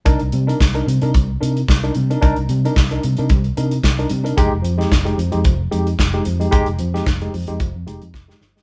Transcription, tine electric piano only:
X:1
M:4/4
L:1/16
Q:"Swing 16ths" 1/4=111
K:Cm
V:1 name="Tine electric piano"
[DEB] z [C,G,] [DEB] z [DEB] [C,G,] [DEB] [C,G,] z [DEB] [EB] z [DEB] [C,G,] [DEB] | [DEB] z [C,G,] [DEB] z [DEB] [C,G,] [DEB] [C,G,] z [DEB] [EB] z [DEB] [C,G,] [DEB] | [A,EG] z F, [A,EG] z [A,EG] F, [A,EG] F, z [A,EG] [EG] z [A,EG] F, [A,EG] | [A,EG] z F, [A,EG] z [A,EG] F, [A,EG] F, z [A,EG] [EG] z [A,EG] F, [A,EG] |]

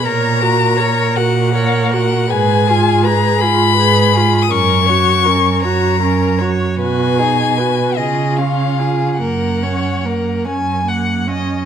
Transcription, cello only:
X:1
M:6/8
L:1/8
Q:3/8=53
K:F#
V:1 name="Cello" clef=bass
A,,3 A,,3 | _A,,3 A,,3 | F,,3 F,,3 | B,,3 C,3 |
F,,3 F,,3 |]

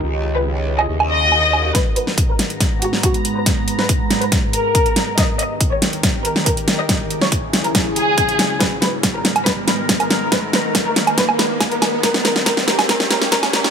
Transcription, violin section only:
X:1
M:4/4
L:1/16
Q:1/4=140
K:G#m
V:1 name="Violin section"
A2 z B3 z d2 z d4- d z | B2 B2 z A2 z3 F2 F2 z B- | B2 z B3 z B2 z A4- A z | d2 d2 z c2 z3 A2 A2 z d- |
d2 z c3 z A2 z G4- G z | B2 B2 z A2 z B2 B2 z A2 z | B2 B2 z A2 z B2 B2 z A2 z | A2 A2 A2 A2 A2 A2 A2 A2 |]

